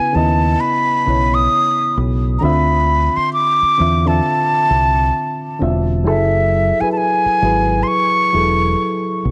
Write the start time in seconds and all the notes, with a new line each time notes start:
Already playing: C#3 B3 E4 F#4 B4 G#5
0.13 D#2 C#3 B3 E4 A5
0.17 D#5
0.60 B5
1.06 B1 C#3 B3 E4 C#5
1.34 D#6
1.97 B1
2.39 D3 C4 A#5
2.43 D2 F4 E5 B5
3.17 C6, muted fingered electric bass stroke
3.33 D6
3.63 muted fingered electric bass stroke
3.78 E2 D3 C4 F4 E5
4.06 D3 C4 F4 E5 A5
4.71 C2
5.59 E1 D3 C4 F4
5.63 E5
6.04 F#1 F#3 E4 G#4 A4 E5
6.80 F#3 E4 G#4 B4 G#5, muted fingered electric bass stroke
6.92 A5
6.97 G#5
7.26 muted fingered electric bass stroke
7.42 G#1 F#3 E4 G#4 B4
7.83 C6
7.88 C#6
8.33 E1 F#3 E4 G#4 A4
9.25 B1